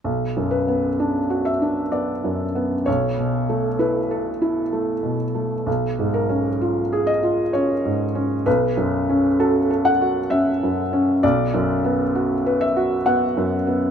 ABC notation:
X:1
M:3/4
L:1/8
Q:1/4=64
K:Bm
V:1 name="Felt piano"
z B2 e d2 | c2 B3 z | z ^A2 ^d c2 | B2 A f e2 |
d3 e f2 |]
V:2 name="Felt piano"
(3B,,, F,, B, (3D F D (3B, F,, B, | (3B,,, B,, A, (3E A E (3A, B,, A, | (3B,,, ^G,, C (3^E ^G E (3C G,, C | (3B,,, F,, C (3F A F (3C F,, C |
(3B,,, F,, B, (3F B F (3B, F,, B, |]